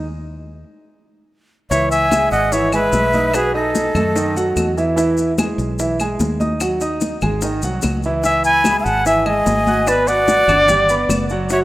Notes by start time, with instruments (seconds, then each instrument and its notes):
Already playing: fingered electric bass D#2
1.71 fingered electric bass C#2, grand piano E3 E4 E5, trumpet C#5, flute E5, high bongo, high conga, maracas
1.90 trumpet E5, flute G#5, high conga, maracas
2.11 grand piano G#3 G#4 G#5, high bongo, high conga, claves, maracas
2.31 fingered electric bass G#1, trumpet D#5, flute F#5, high bongo, maracas
2.52 grand piano E3 E4 E5, trumpet C#5, flute E5, high bongo, high conga, maracas
2.72 grand piano G#3 G#4 G#5, trumpet B4, flute E5, high bongo, high conga, claves, maracas
2.92 fingered electric bass B1, high bongo, low bongo, high conga, maracas
3.13 grand piano D#4 D#5 D#6, high bongo, high conga, maracas
3.34 grand piano F#3 F#4 F#5, trumpet G#4, flute B4, high bongo, claves, maracas
3.54 grand piano D#4 D#5 D#6, trumpet A4, flute D#5, high conga
3.75 high bongo, high conga, maracas
3.95 fingered electric bass F#2, grand piano A3 A4 A5, high bongo, high conga, low conga, claves, maracas
4.16 grand piano D#3 D#4 D#5, high bongo, high conga, maracas
4.35 grand piano F#3 F#4 F#5, high bongo, high conga, maracas
4.57 fingered electric bass E2, high bongo, low bongo, high conga, claves, maracas
4.77 grand piano E3 E4 E5, high bongo, high conga, maracas
4.96 grand piano E3 E4 E5, high bongo, high conga, maracas
5.17 high conga, maracas
5.38 grand piano G#3 G#4 G#5, high bongo, high conga, claves, maracas
5.58 fingered electric bass B1, high bongo, maracas
5.79 grand piano E3 E4 E5, high bongo, high conga, maracas
6.00 grand piano G#3 G#4 G#5, high bongo, high conga, claves, maracas
6.20 fingered electric bass D#2, high bongo, low bongo, high conga, maracas
6.40 grand piano D#4 D#5 D#6, high bongo, high conga, maracas
6.60 grand piano F#3 F#4 F#5, high bongo, high conga, claves, maracas
6.81 grand piano D#4 D#5 D#6, high conga, maracas
7.01 high bongo, high conga, maracas
7.21 fingered electric bass G#1, grand piano G#3 G#4 G#5, high bongo, high conga, low conga, claves, maracas
7.42 grand piano D#3 D#4 D#5, high bongo, high conga, maracas
7.62 fingered electric bass C2, grand piano F#3 F#4 F#5, high bongo, high conga, maracas
7.82 fingered electric bass C#2, high bongo, low bongo, high conga, claves, maracas
8.03 grand piano E3 E4 E5, high bongo, high conga, maracas
8.23 grand piano E3 E4 E5, trumpet E5, flute G#5, high bongo, high conga, maracas
8.44 trumpet G#5, flute B5, high conga, maracas
8.64 grand piano G#3 G#4 G#5, high bongo, high conga, claves, maracas
8.80 trumpet E5, flute G#5
8.84 fingered electric bass G#1, trumpet F#5, flute A5, high bongo, maracas
9.05 grand piano E3 E4 E5, trumpet E5, flute G#5, high bongo, high conga, maracas
9.26 grand piano G#3 G#4 G#5, trumpet D#5, flute G#5, high bongo, high conga, claves
9.46 fingered electric bass G#1, high bongo, low bongo, high conga, maracas
9.67 grand piano F#4 F#5 F#6, high bongo, high conga, maracas
9.87 grand piano B3 B4 B5, trumpet B4, flute D5, high bongo, claves, maracas
10.07 grand piano F#4 F#5 F#6, trumpet D5, flute F#5, high conga, maracas
10.28 high bongo, high conga, maracas
10.48 fingered electric bass G1, grand piano D4 D5 D6, high bongo, high conga, low conga, claves, maracas
10.68 grand piano G3 G4 G5, high bongo, high conga, low conga, maracas
10.89 grand piano B3 B4 B5, high bongo, high conga, maracas
11.09 fingered electric bass F#1, high bongo, low bongo, high conga, claves, maracas
11.29 grand piano F#3 F#4 F#5, high bongo, high conga, maracas
11.49 grand piano F#3 F#4 F#5, trumpet C#5, flute E5, high bongo, high conga, maracas